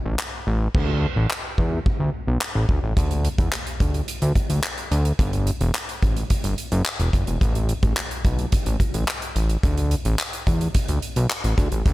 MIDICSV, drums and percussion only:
0, 0, Header, 1, 2, 480
1, 0, Start_track
1, 0, Key_signature, 2, "major"
1, 0, Tempo, 555556
1, 645, Time_signature, 4, 2, 24, 8
1, 10310, End_track
2, 0, Start_track
2, 0, Title_t, "Drums"
2, 165, Note_on_c, 9, 39, 114
2, 251, Note_off_c, 9, 39, 0
2, 645, Note_on_c, 9, 36, 116
2, 645, Note_on_c, 9, 49, 92
2, 731, Note_off_c, 9, 36, 0
2, 731, Note_off_c, 9, 49, 0
2, 1126, Note_on_c, 9, 39, 98
2, 1212, Note_off_c, 9, 39, 0
2, 1366, Note_on_c, 9, 36, 83
2, 1452, Note_off_c, 9, 36, 0
2, 1607, Note_on_c, 9, 36, 103
2, 1694, Note_off_c, 9, 36, 0
2, 2085, Note_on_c, 9, 39, 118
2, 2171, Note_off_c, 9, 39, 0
2, 2323, Note_on_c, 9, 36, 94
2, 2410, Note_off_c, 9, 36, 0
2, 2564, Note_on_c, 9, 36, 114
2, 2565, Note_on_c, 9, 42, 88
2, 2651, Note_off_c, 9, 36, 0
2, 2651, Note_off_c, 9, 42, 0
2, 2685, Note_on_c, 9, 42, 52
2, 2771, Note_off_c, 9, 42, 0
2, 2804, Note_on_c, 9, 42, 71
2, 2890, Note_off_c, 9, 42, 0
2, 2924, Note_on_c, 9, 36, 107
2, 2924, Note_on_c, 9, 42, 50
2, 3010, Note_off_c, 9, 42, 0
2, 3011, Note_off_c, 9, 36, 0
2, 3045, Note_on_c, 9, 42, 95
2, 3046, Note_on_c, 9, 39, 102
2, 3131, Note_off_c, 9, 42, 0
2, 3132, Note_off_c, 9, 39, 0
2, 3168, Note_on_c, 9, 42, 53
2, 3254, Note_off_c, 9, 42, 0
2, 3286, Note_on_c, 9, 36, 90
2, 3286, Note_on_c, 9, 42, 70
2, 3372, Note_off_c, 9, 36, 0
2, 3372, Note_off_c, 9, 42, 0
2, 3407, Note_on_c, 9, 42, 48
2, 3493, Note_off_c, 9, 42, 0
2, 3525, Note_on_c, 9, 42, 97
2, 3611, Note_off_c, 9, 42, 0
2, 3644, Note_on_c, 9, 42, 58
2, 3731, Note_off_c, 9, 42, 0
2, 3763, Note_on_c, 9, 36, 91
2, 3765, Note_on_c, 9, 42, 66
2, 3849, Note_off_c, 9, 36, 0
2, 3851, Note_off_c, 9, 42, 0
2, 3885, Note_on_c, 9, 42, 64
2, 3971, Note_off_c, 9, 42, 0
2, 4004, Note_on_c, 9, 42, 83
2, 4005, Note_on_c, 9, 39, 123
2, 4090, Note_off_c, 9, 42, 0
2, 4091, Note_off_c, 9, 39, 0
2, 4126, Note_on_c, 9, 42, 52
2, 4213, Note_off_c, 9, 42, 0
2, 4247, Note_on_c, 9, 42, 76
2, 4333, Note_off_c, 9, 42, 0
2, 4364, Note_on_c, 9, 42, 50
2, 4451, Note_off_c, 9, 42, 0
2, 4485, Note_on_c, 9, 36, 114
2, 4486, Note_on_c, 9, 42, 89
2, 4571, Note_off_c, 9, 36, 0
2, 4572, Note_off_c, 9, 42, 0
2, 4606, Note_on_c, 9, 42, 53
2, 4693, Note_off_c, 9, 42, 0
2, 4725, Note_on_c, 9, 42, 68
2, 4811, Note_off_c, 9, 42, 0
2, 4844, Note_on_c, 9, 42, 52
2, 4931, Note_off_c, 9, 42, 0
2, 4966, Note_on_c, 9, 42, 90
2, 4967, Note_on_c, 9, 39, 101
2, 5052, Note_off_c, 9, 42, 0
2, 5053, Note_off_c, 9, 39, 0
2, 5088, Note_on_c, 9, 42, 55
2, 5174, Note_off_c, 9, 42, 0
2, 5205, Note_on_c, 9, 42, 71
2, 5206, Note_on_c, 9, 36, 88
2, 5291, Note_off_c, 9, 42, 0
2, 5292, Note_off_c, 9, 36, 0
2, 5326, Note_on_c, 9, 42, 48
2, 5413, Note_off_c, 9, 42, 0
2, 5444, Note_on_c, 9, 42, 102
2, 5447, Note_on_c, 9, 36, 99
2, 5531, Note_off_c, 9, 42, 0
2, 5534, Note_off_c, 9, 36, 0
2, 5563, Note_on_c, 9, 42, 56
2, 5650, Note_off_c, 9, 42, 0
2, 5684, Note_on_c, 9, 42, 67
2, 5771, Note_off_c, 9, 42, 0
2, 5804, Note_on_c, 9, 42, 62
2, 5890, Note_off_c, 9, 42, 0
2, 5922, Note_on_c, 9, 42, 83
2, 5923, Note_on_c, 9, 39, 116
2, 6009, Note_off_c, 9, 42, 0
2, 6010, Note_off_c, 9, 39, 0
2, 6044, Note_on_c, 9, 42, 57
2, 6130, Note_off_c, 9, 42, 0
2, 6163, Note_on_c, 9, 36, 93
2, 6165, Note_on_c, 9, 42, 75
2, 6249, Note_off_c, 9, 36, 0
2, 6252, Note_off_c, 9, 42, 0
2, 6283, Note_on_c, 9, 42, 49
2, 6369, Note_off_c, 9, 42, 0
2, 6404, Note_on_c, 9, 36, 113
2, 6405, Note_on_c, 9, 42, 89
2, 6491, Note_off_c, 9, 36, 0
2, 6491, Note_off_c, 9, 42, 0
2, 6525, Note_on_c, 9, 42, 53
2, 6611, Note_off_c, 9, 42, 0
2, 6643, Note_on_c, 9, 42, 68
2, 6730, Note_off_c, 9, 42, 0
2, 6763, Note_on_c, 9, 42, 51
2, 6764, Note_on_c, 9, 36, 107
2, 6849, Note_off_c, 9, 42, 0
2, 6850, Note_off_c, 9, 36, 0
2, 6885, Note_on_c, 9, 39, 102
2, 6885, Note_on_c, 9, 42, 98
2, 6971, Note_off_c, 9, 42, 0
2, 6972, Note_off_c, 9, 39, 0
2, 7007, Note_on_c, 9, 42, 55
2, 7093, Note_off_c, 9, 42, 0
2, 7124, Note_on_c, 9, 42, 72
2, 7125, Note_on_c, 9, 36, 89
2, 7210, Note_off_c, 9, 42, 0
2, 7212, Note_off_c, 9, 36, 0
2, 7246, Note_on_c, 9, 42, 47
2, 7332, Note_off_c, 9, 42, 0
2, 7363, Note_on_c, 9, 42, 101
2, 7367, Note_on_c, 9, 36, 107
2, 7449, Note_off_c, 9, 42, 0
2, 7453, Note_off_c, 9, 36, 0
2, 7483, Note_on_c, 9, 42, 60
2, 7570, Note_off_c, 9, 42, 0
2, 7602, Note_on_c, 9, 36, 88
2, 7604, Note_on_c, 9, 42, 68
2, 7689, Note_off_c, 9, 36, 0
2, 7691, Note_off_c, 9, 42, 0
2, 7725, Note_on_c, 9, 42, 66
2, 7811, Note_off_c, 9, 42, 0
2, 7843, Note_on_c, 9, 42, 82
2, 7844, Note_on_c, 9, 39, 115
2, 7930, Note_off_c, 9, 42, 0
2, 7931, Note_off_c, 9, 39, 0
2, 7965, Note_on_c, 9, 42, 54
2, 8052, Note_off_c, 9, 42, 0
2, 8086, Note_on_c, 9, 42, 75
2, 8172, Note_off_c, 9, 42, 0
2, 8203, Note_on_c, 9, 42, 50
2, 8289, Note_off_c, 9, 42, 0
2, 8324, Note_on_c, 9, 36, 116
2, 8325, Note_on_c, 9, 42, 93
2, 8411, Note_off_c, 9, 36, 0
2, 8411, Note_off_c, 9, 42, 0
2, 8445, Note_on_c, 9, 42, 53
2, 8531, Note_off_c, 9, 42, 0
2, 8563, Note_on_c, 9, 42, 67
2, 8650, Note_off_c, 9, 42, 0
2, 8683, Note_on_c, 9, 42, 53
2, 8769, Note_off_c, 9, 42, 0
2, 8805, Note_on_c, 9, 39, 100
2, 8805, Note_on_c, 9, 42, 97
2, 8891, Note_off_c, 9, 42, 0
2, 8892, Note_off_c, 9, 39, 0
2, 8926, Note_on_c, 9, 42, 56
2, 9013, Note_off_c, 9, 42, 0
2, 9045, Note_on_c, 9, 36, 92
2, 9045, Note_on_c, 9, 42, 72
2, 9131, Note_off_c, 9, 42, 0
2, 9132, Note_off_c, 9, 36, 0
2, 9166, Note_on_c, 9, 42, 48
2, 9252, Note_off_c, 9, 42, 0
2, 9284, Note_on_c, 9, 42, 102
2, 9287, Note_on_c, 9, 36, 107
2, 9370, Note_off_c, 9, 42, 0
2, 9373, Note_off_c, 9, 36, 0
2, 9403, Note_on_c, 9, 42, 59
2, 9490, Note_off_c, 9, 42, 0
2, 9524, Note_on_c, 9, 42, 66
2, 9611, Note_off_c, 9, 42, 0
2, 9644, Note_on_c, 9, 42, 64
2, 9730, Note_off_c, 9, 42, 0
2, 9764, Note_on_c, 9, 39, 118
2, 9764, Note_on_c, 9, 42, 86
2, 9850, Note_off_c, 9, 42, 0
2, 9851, Note_off_c, 9, 39, 0
2, 9885, Note_on_c, 9, 42, 56
2, 9972, Note_off_c, 9, 42, 0
2, 10003, Note_on_c, 9, 36, 95
2, 10006, Note_on_c, 9, 42, 77
2, 10089, Note_off_c, 9, 36, 0
2, 10092, Note_off_c, 9, 42, 0
2, 10123, Note_on_c, 9, 42, 50
2, 10210, Note_off_c, 9, 42, 0
2, 10244, Note_on_c, 9, 36, 117
2, 10245, Note_on_c, 9, 42, 88
2, 10310, Note_off_c, 9, 36, 0
2, 10310, Note_off_c, 9, 42, 0
2, 10310, End_track
0, 0, End_of_file